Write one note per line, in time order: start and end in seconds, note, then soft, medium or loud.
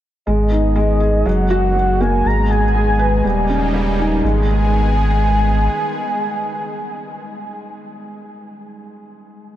0.26 1.24 G#1 medium
0.26 1.25 D#3 medium
0.26 3.21 G#3 medium
0.26 0.51 G#3 medium
0.26 1.25 B3 medium
0.26 1.25 G#4 medium
0.26 1.27 D#5 medium
0.51 0.75 D#4 medium
0.76 1.00 G#3 medium
1.00 1.24 G#4 medium
1.26 2.23 F#1 medium
1.26 2.24 C#3 medium
1.26 1.50 F#3 medium
1.26 2.25 A#3 medium
1.26 2.24 F#4 medium
1.26 2.02 F#5 medium
1.50 1.74 F#4 medium
1.75 1.99 F#3 medium
2.00 2.24 A#3 medium
2.00 2.28 G#5 loud
2.25 3.22 G#1 medium
2.25 3.24 D#3 medium
2.25 2.49 G#3 medium
2.25 3.24 B3 medium
2.25 3.24 G#4 medium
2.25 2.52 A#5 loud
2.50 2.64 G#4 medium
2.50 3.99 G#5 loud
2.75 2.89 G#3 medium
2.99 3.23 B4 medium
3.24 4.22 D#1 medium
3.24 4.23 C#3 medium
3.24 3.48 G3 medium
3.24 4.23 G3 medium
3.24 4.23 A#3 medium
3.24 4.23 D#4 medium
3.49 3.73 C#4 medium
3.74 3.98 G3 medium
3.99 4.22 D#4 loud
4.23 5.69 G#1 loud
4.23 7.75 D#3 medium
4.23 4.47 G#3 medium
4.23 7.75 G#3 medium
4.23 7.75 B3 medium
4.23 7.75 G#4 loud
4.23 7.75 G#5 loud